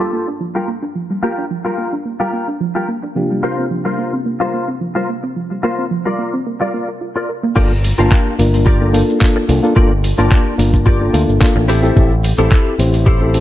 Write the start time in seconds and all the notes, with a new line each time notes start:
Already playing: G2 A#3 D4 F4 A5
0.00 G3 F4 G4 A4
0.13 A#3
0.28 D4
0.40 F3
0.55 G3 F4 G4 A#4
0.68 A#3
0.83 D4, muted clean electric guitar stroke
0.96 F3
1.10 G3
1.23 A#3 F4 G4 A#4
1.38 D4
1.51 F3
1.65 G3 F4 G4 A#4
1.78 A#3
1.93 D4
2.06 A#3
2.20 G3 F4 G4 A#4
2.33 A#3
2.48 D4
2.61 F3
2.75 G3 F4 G4 A#4
2.88 A#3
3.02 D4, muted clean electric guitar stroke
3.15 C3 F3 A#3 D4 F4 G4
3.31 G3
3.43 A#3 F4 A#4 C5
3.58 C4
3.71 F3
3.85 G3 F4 A#4 C5
3.98 A#3
4.13 C4
4.26 A#3
4.40 G3 F4 A#4 C5
4.54 A#3
4.68 C4
4.81 F3
4.95 G3 F4 A#4 C5
5.09 A#3
5.23 C4, muted clean electric guitar stroke
5.36 F3
5.51 G3
5.63 A#3 F4 A#4 C5
5.79 C4
5.91 F3
6.05 G3 F4 A#4 D5
6.19 A#3
6.34 C4
6.46 A#3
6.61 G3 F4 A#4 D5
6.74 A#3
6.88 A#4
7.01 F4
7.16 F4 A#4 D5
7.29 A#4
7.43 A#3, muted clean electric guitar stroke
7.56 G1 A#3 D4 F4 G4 A4 A#4 D5, kick, crash, cabasa
7.83 muted clean electric guitar stroke, open hi-hat, cabasa
7.98 G1 A#3 D4 F4 G4 A#4 F5 A5, cabasa
8.12 kick, clap, cabasa
8.39 G1 A#3 D4 F4 A#4, open hi-hat, cabasa
8.54 open hi-hat, cabasa
8.66 F4 G4 A#4 D5, kick, cabasa
8.81 A#3 D4 F4 A4
8.93 A#3 D4 F4 A4, open hi-hat, cabasa
9.10 cabasa
9.21 A#3 D4 F4 A4, kick, clap, cabasa
9.36 muted clean electric guitar stroke
9.48 C2 A#3 D4 F4 A4, muted clean electric guitar stroke, open hi-hat, cabasa
9.63 A#3 D4 F4 A4, cabasa
9.76 G1 A#3 D4 F4 G4 A4 A#4 D5, kick, cabasa
10.04 muted clean electric guitar stroke, open hi-hat, cabasa
10.18 G1 A#3 D4 F4 G4 A#4 D5 A5, cabasa
10.32 kick, clap, cabasa
10.58 G1 A#3 D4 F4 A#4, open hi-hat, cabasa
10.74 kick, cabasa
10.86 F4 G4 A#4 D5, kick, cabasa
11.00 A#3 D4 F4 A4
11.13 D2 A#3 D4 F4 A4, open hi-hat, cabasa
11.28 G1, cabasa
11.40 A#3 D4 F4 A4, kick, clap, cabasa
11.56 A1, muted clean electric guitar stroke
11.68 C4 E4 G4 A4 C5, open hi-hat, cabasa
11.83 C4 E4 G4 A4, cabasa
11.95 A1 C4 E4 G4 A4, kick, cabasa
12.24 muted clean electric guitar stroke, open hi-hat, cabasa
12.38 A1 C4 E4 G4 A4 C5, cabasa
12.52 kick, clap, cabasa
12.79 A1 C4 E4 G4 C5, open hi-hat, cabasa
12.94 open hi-hat, cabasa
13.06 E4 G4 A4 C5, kick, cabasa
13.21 C4 E4 G4 A4
13.34 C4 E4 G4 A4, open hi-hat, cabasa